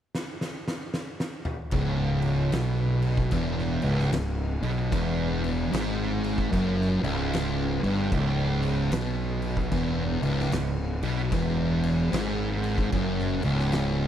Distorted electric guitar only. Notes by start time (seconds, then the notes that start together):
1.73 C#2
2.53 B2
3.33 E2
3.83 C#2
4.12 C#2
4.62 B2
4.92 E2
5.72 G#2
6.52 F#2
7.03 C#2
7.83 G2
8.12 C#2
8.92 B2
9.72 E2
10.22 C#2
10.53 C#2
11.04 B2
11.32 E2
12.12 G#2
12.92 F#2
13.44 C#2